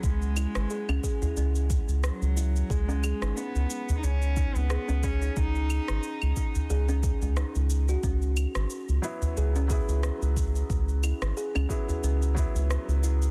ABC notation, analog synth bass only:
X:1
M:4/4
L:1/16
Q:"Swing 16ths" 1/4=90
K:C#m
V:1 name="Analog synth bass" clef=bass
C,,2 z G,,, z C,, z2 C,,2 z C,, z C,,2 z | C,,2 z G,,, z C,, z2 C,,2 z C,, z C,,2 z | C,,2 z G,,, z C,, z2 C,,2 z C,, z C,,2 z | C,,2 z G,,, z C,, z2 C,,2 z C,, z C,,2 z |
C,,2 z G,,, z C,, z2 C,,2 z C,, z C,,2 z |]